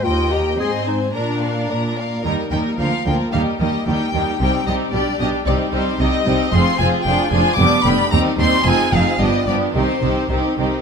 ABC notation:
X:1
M:2/4
L:1/8
Q:1/4=111
K:Eb
V:1 name="Violin section"
g b c' a | b f b f | b g f g | f e g2 |
g e d e | d c e2 | [K:Cm] c' a g a | d' =b _b c' |
a f e d | c2 z2 |]
V:2 name="Violin section"
[eg] [eg] [Ae] c | [Bd] [Bd] [Bd] [Bd] | [EB] [EB] [FB] [FB] | [EG] [EG] [EG] [EG] |
[EG] [EG] G G | [EG] [EG] [EG] [EG] | [K:Cm] [FA] [FA] [FA] [FA] | [DG] [DG] [EG] [EG] |
[EA] [EA] [DG] [DG] | [EG] [EG] [EG] [EG] |]
V:3 name="Clarinet"
F G A E | D2 z2 | z4 | z4 |
z4 | z4 | [K:Cm] z4 | z4 |
z4 | z4 |]
V:4 name="Viola section"
B,2 C2 | D3 z | [G,B,] [G,B,] [F,B,] [F,B,] | [G,B,] [G,B,] [G,B,] [G,B,] |
[G,C] [G,C] [G,D] [G,D] | [G,C] [G,C] [G,C] [G,C] | [K:Cm] [F,C] [F,C] [F,D] [F,D] | [G,=B,] [G,B,] [G,C] [G,C] |
[F,C] [F,C] [F,=B,] [F,B,] | [E,C] [E,C] [E,C] [E,C] |]
V:5 name="Cello section" clef=bass
E,,2 A,,2 | B,,2 B,,2 | E, E, D, D, | E, E, E, E, |
C, C, =B,, B,, | C, C, C, C, | [K:Cm] F,, F,, F,, F,, | F,, F,, E,, E,, |
F,, F,, G,, G,, | C, C, C, C, |]
V:6 name="Double bass section" clef=bass
z4 | z4 | E,, E,, D,, D,, | E,, E,, E,, E,, |
C,, C,, =B,,, B,,, | C,, C,, C,, C,, | [K:Cm] F,,, F,,, F,,, F,,, | F,,, F,,, E,, E,, |
F,,, F,,, G,,, G,,, | C,, C,, C,, C,, |]